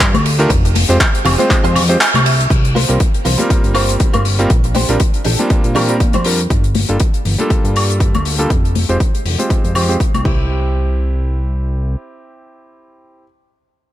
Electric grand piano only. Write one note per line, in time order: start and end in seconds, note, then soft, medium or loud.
0.00 0.35 D4 medium
0.00 0.36 F4 medium
0.00 0.36 G4 medium
0.39 0.49 A3 loud
0.39 0.49 D4 medium
0.39 0.49 F4 medium
0.39 0.49 G4 medium
0.39 0.49 A#4 loud
0.89 0.95 G#3 loud
0.89 0.95 C4 medium
0.89 0.95 F4 medium
0.89 0.95 G4 medium
0.89 0.96 C5 loud
1.38 1.73 G#3 medium
1.38 1.73 C4 medium
1.38 1.73 F4 medium
1.38 1.73 C5 loud
1.38 1.73 G5 medium
1.89 1.95 G#3 medium
1.89 1.95 C4 medium
1.89 1.95 F4 medium
1.89 1.95 G4 medium
1.89 1.96 C5 loud
2.89 2.95 G3 medium
2.89 2.95 A#3 medium
2.89 2.95 C4 medium
2.89 2.95 F4 medium
2.89 2.96 A#4 medium
3.38 4.35 G3 medium
3.38 4.36 A#3 medium
3.38 4.36 C4 medium
3.38 4.36 F4 medium
3.38 4.36 A#4 medium
4.39 4.49 G3 medium
4.39 4.49 A#3 medium
4.39 4.49 C4 medium
4.39 4.49 F4 medium
4.39 4.49 A#4 loud
4.89 4.95 G3 medium
4.89 4.95 C4 medium
4.89 4.95 D4 medium
4.89 4.96 F4 medium
4.89 4.96 A#4 loud
5.39 5.73 G3 medium
5.39 5.74 A#3 medium
5.39 5.73 C4 medium
5.39 5.73 D4 medium
5.39 5.73 F4 medium
5.75 5.87 G3 medium
5.75 5.87 C4 medium
5.75 5.87 D4 medium
5.75 5.87 F4 medium
5.75 5.87 A#4 medium
5.88 5.95 G3 medium
5.88 5.95 C4 medium
5.88 5.95 D4 medium
5.88 5.95 F4 medium
5.88 5.95 A#4 loud
6.25 6.38 G3 medium
6.25 6.38 C4 medium
6.25 6.38 D4 medium
6.25 6.38 F4 medium
6.25 6.38 A#4 medium
6.89 6.95 G3 medium
6.89 6.95 A#3 medium
6.89 6.95 D4 medium
6.89 6.95 F4 medium
6.89 6.96 A4 medium
7.38 8.35 G3 medium
7.38 8.36 A#3 medium
7.38 8.36 D4 medium
7.38 8.36 F4 medium
7.38 8.36 A4 loud
8.38 8.49 G3 medium
8.38 8.49 A#3 medium
8.38 8.49 D4 medium
8.38 8.49 F4 medium
8.38 8.49 A4 loud
8.89 8.95 G#3 medium
8.89 8.95 C4 medium
8.89 8.95 F4 medium
8.89 8.95 G4 medium
8.89 8.96 C5 medium
9.38 9.73 G#3 medium
9.38 9.73 C4 medium
9.38 9.73 F4 medium
9.38 9.73 G4 medium
9.38 9.73 C5 medium
9.75 9.87 G#3 medium
9.75 9.87 C4 medium
9.75 9.87 F4 medium
9.75 9.87 G4 medium
9.75 9.87 C5 medium
9.88 9.95 G#3 medium
9.88 9.95 C4 medium
9.88 9.95 F4 medium
9.88 9.95 G4 medium
9.88 9.95 C5 medium
10.24 13.22 C4 medium
10.24 13.23 E4 medium
10.24 13.25 G4 medium